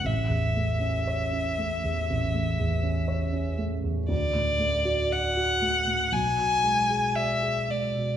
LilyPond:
<<
  \new Staff \with { instrumentName = "Violin" } { \time 4/4 \key a \major \tempo 4 = 59 e''2.~ e''8 r8 | d''4 fis''4 gis''4 e''8 d''8 | }
  \new Staff \with { instrumentName = "Grand piano" } { \time 4/4 \key a \major a,,16 e,16 a16 cis'16 cis''16 cis'16 a16 e,16 a,,16 a16 e,16 cis'16 cis''16 cis'16 a16 e,16 | d,16 a,16 a16 fis'16 d''16 fis'16 a16 a,16 b,,16 b,16 gis16 gis'16 d''16 gis'16 gis16 b,16 | }
>>